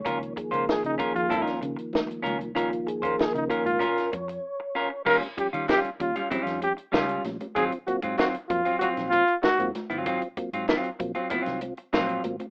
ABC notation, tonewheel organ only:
X:1
M:4/4
L:1/16
Q:1/4=96
K:Db
V:1 name="Tonewheel organ"
d2 A6 z8 | F2 A2 B2 B4 d6 | z [=G,D] [F,G,D] z3 [F,G,D] [G,D] [G,D] z [G,D] z3 [F,G,D] [G,D] | z [CF] [G,B,CF] z3 [G,B,CF] [CF] [CF] z [CF] z2 [G,B,CF] z2 |
z [CF] [G,B,CF] z3 [G,B,CF] [CF] [CF] z [CF] z3 [G,B,CF] [CF] |]
V:2 name="Tonewheel organ" clef=bass
[E,F,B,]16 | [E,F,B,]6 [E,F,B,]2 z8 | E, z3 E, z4 E, z2 E, z3 | [A,,E,] z3 [A,,E,] z4 [A,,E,] z4 z [A,,E,] |
[A,,E,] z3 [A,,E,] z4 [A,,E,] z2 [A,,E,] z3 |]